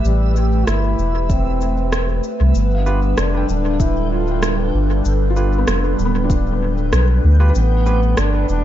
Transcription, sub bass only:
0.04 A1
0.67 G1
0.98 E1
2.40 C2
2.55 G1
3.18 F1
3.49 D1
4.74 G1
5.05 G1
5.67 F1
5.99 D1
6.92 B1
7.24 D2
7.55 A1
8.18 G1
8.49 E1

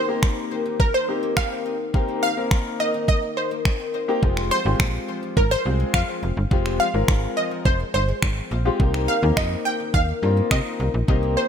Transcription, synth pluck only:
Already playing: C5
0.80 A#4
0.94 C5
1.37 F5
2.23 F5
2.80 D#5
3.09 D#5
3.37 C5
4.51 C5
5.37 A#4
5.51 C5
5.94 F5
6.80 F5
7.37 D#5
7.65 C5
7.94 C5
9.08 F5
9.37 D#5
9.65 G5
9.94 F5
10.51 D#5
11.37 C5

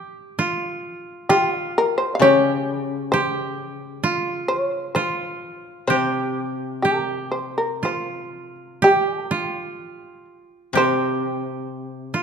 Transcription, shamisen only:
1.29 G4
1.57 F4
1.78 A#4
1.98 C5
2.15 F5
2.22 C#5
3.12 C5
4.48 C5
4.59 C#5
4.95 C5
5.88 C5
6.82 A#4
7.31 C5
7.58 A#4
7.85 C5
8.84 G4
9.07 G#4
9.28 A#4
10.77 C5

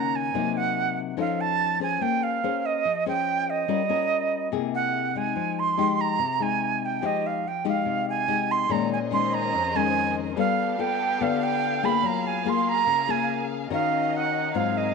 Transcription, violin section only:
8.69 C#4 G#4 A#4 C5 D#5
10.37 B3 G4 A4 F5
12.02 A#3 G#4
13.71 C#4 D#4 D#5
14.54 C4 G#4 A#4 F5

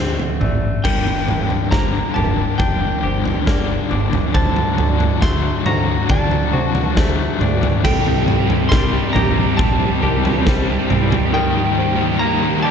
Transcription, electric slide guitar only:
0.84 G5
1.71 A#5
2.14 A5
2.58 G5
4.34 A5
5.22 C6
5.66 A#5
6.11 A5
7.84 G5
8.69 C6
9.13 A#5
9.57 A5
11.34 G5
12.19 A#5
12.63 A5

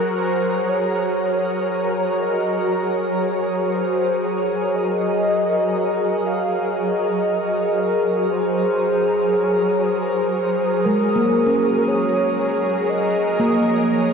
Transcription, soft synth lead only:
Already playing: A#4
0.18 C5
0.69 C#5
2.22 D#5
2.72 C#5
3.74 C5
4.24 C#5
4.75 D#5
6.26 F5
6.78 D#5
7.80 A#4
8.31 C5
9.32 C#5
9.82 C5
10.85 A#4
11.88 C#5
12.89 D#5
13.90 C#5

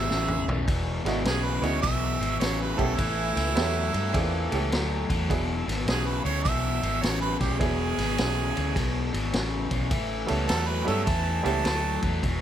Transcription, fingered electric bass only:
0.11 A1
0.48 B1
0.68 E1
1.05 G#1
1.25 B1
1.62 D2
1.84 B1
2.20 G#1
2.40 A1
2.79 B1
2.99 A1
3.36 C#2
3.57 E2
3.94 G2
4.15 E2
4.52 C#2
4.72 D2
5.10 E2
5.31 E1
5.68 G#1
5.86 B1
6.25 D2
6.46 B1
6.83 G#1
7.03 A1
7.41 B1
7.61 E1
7.98 G#1
8.19 B1
8.57 D2
8.77 B1
9.14 G#1
9.34 A1
9.72 B1
9.91 A1
10.30 C#2
10.50 E2
10.88 G2
11.08 E2
11.45 C#2
11.64 D2
12.03 E2
12.23 E1

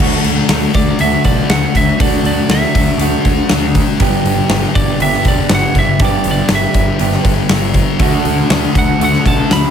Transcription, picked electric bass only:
0.00 D2
0.24 D2
0.49 D2
0.74 D2
0.99 D2
1.25 B1
1.49 D2
1.75 D2
2.00 D2
2.23 D2
2.48 D2
2.75 D2
2.98 D2
3.25 D2
3.50 D2
4.00 G1
4.24 G1
4.49 G1
4.75 G1
4.99 G1
5.25 E1
5.50 G1
5.75 G1
6.00 G1
6.25 G1
6.50 G1
6.74 G1
7.00 G1
7.25 G1
7.49 G1
8.00 D2
8.25 D2
8.50 D2
8.75 D2
8.99 D2
9.25 B1
9.49 D2

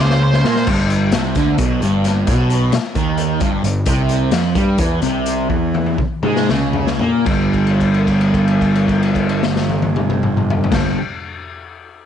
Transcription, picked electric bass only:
0.00 C#2
0.44 A#2
0.67 G1
1.12 C2
1.36 D2
1.58 B1
1.81 G1
2.27 B1
2.73 muted picked electric bass stroke
2.95 D#2
3.41 G1
3.64 G1
3.86 C2
4.32 F2
4.55 G2
4.79 E2
5.02 C2
5.50 E2
5.98 muted picked electric bass stroke
6.23 G#2
6.49 C#2
7.01 A#2
7.26 G1
10.72 G1

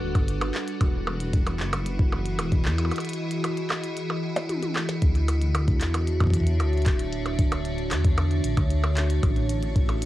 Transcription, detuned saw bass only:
0.02 D1
0.15 G1
0.81 E1
1.60 F#1
2.39 E1
2.65 E2
5.02 D2
5.81 E2
6.60 D2
6.86 D1
7.92 E2
8.44 A1
8.57 D2
9.23 A1
10.02 B1

